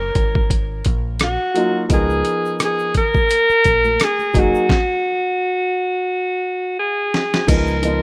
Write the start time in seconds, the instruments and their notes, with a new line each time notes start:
Already playing: fingered electric bass F#1, alto saxophone A#4
0.15 fingered electric bass G#1, kick, closed hi-hat
0.35 kick
0.50 kick, closed hi-hat
0.85 fingered electric bass A#1, kick, closed hi-hat
1.20 cross-stick, closed hi-hat
1.24 alto saxophone F#4
1.54 grand piano F#3 A#3 D#4 F4, closed hi-hat
1.89 fingered electric bass C#2, grand piano F3 B3 D#4 A#4, kick, closed hi-hat, shaker
1.93 alto saxophone G#4
2.10 shaker
2.25 closed hi-hat, shaker
2.45 shaker
2.59 cross-stick, closed hi-hat, shaker
2.65 alto saxophone G#4
2.79 shaker
2.94 alto saxophone A#4, kick, closed hi-hat, low conga, shaker
3.14 kick, high conga, shaker
3.29 closed hi-hat, shaker
3.49 muted fingered electric bass stroke, shaker
3.64 fingered electric bass A#1, kick, closed hi-hat, shaker
3.84 high conga, shaker
4.00 alto saxophone G#4, cross-stick, closed hi-hat, shaker
4.19 high conga, shaker
4.33 fingered electric bass F#1, grand piano F#3 A#3 D#4 G#4, kick, closed hi-hat, low conga, shaker
4.39 alto saxophone F#4
4.55 shaker
4.69 kick, snare
6.79 alto saxophone G#4
7.14 snare
7.34 snare
7.47 fingered electric bass C#2, grand piano F3 B3 D#4 A#4, alto saxophone A#4, kick, closed hi-hat, crash, shaker
7.67 shaker
7.82 grand piano F3 B3 D#4 F4, closed hi-hat, high conga, shaker